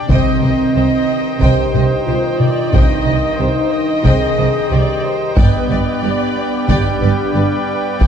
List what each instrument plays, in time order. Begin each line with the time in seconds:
0.07 double bass section C2, trombone section G2 D#3, cello section C3, timpani C3, french horn section C4, pipe organ D#4 C5 G5, violin section C5 D#5 G5, trumpet D#5, viola section D#5, taiko
0.42 double bass section C2, cello section C3, violin section C5 D#5, viola section D#5
0.74 double bass section C2, cello section C3, violin section G4 C5, viola section D#5
1.41 double bass section C2, cello section C3, french horn section G4, violin section C5 D#5 G5, viola section C5, taiko
1.74 double bass section C2, cello section C3, violin section C5 D#5, viola section C5, taiko mid
2.07 double bass section C2, cello section C3, french horn section F4, violin section G4 C5, viola section C5
2.40 viola section D5, taiko mid
2.72 double bass section C2, cello section C3, french horn section D#4, violin section C5 D#5 G5, viola section D#5, taiko
3.05 double bass section C2, cello section C3, violin section C5 D#5
3.39 double bass section C2, cello section C3, violin section G4 C5, viola section C5
3.72 viola section D#5
4.04 double bass section C2, cello section C3, french horn section G#4, violin section C5 D#5 G5, taiko
4.37 double bass section C2, cello section C3, violin section C5 D#5
4.70 double bass section C2, cello section C3, french horn section G4, violin section G4 C5, viola section D5
5.04 viola section C5
5.37 double bass section G1, cello section G2, trombone section G2 G3, french horn section B3, pipe organ B3 G4 B4 G5, viola section B4, violin section D5 G5, taiko
5.70 double bass section G1, cello section G2, violin section B4 D5, viola section D5
6.03 double bass section G1, cello section G2, violin section G4 B4 D5, trumpet D5
6.68 double bass section G1, cello section G2, french horn section D#4, viola section G4, violin section D5 G5, taiko
7.01 double bass section G1, cello section G2, french horn section D4, violin section B4 D5
7.34 double bass section G1, cello section G2, violin section G4 B4 D5, viola section B4
8.00 double bass section G1, cello section G2, french horn section B3, violin section D5 G5, viola section D5, taiko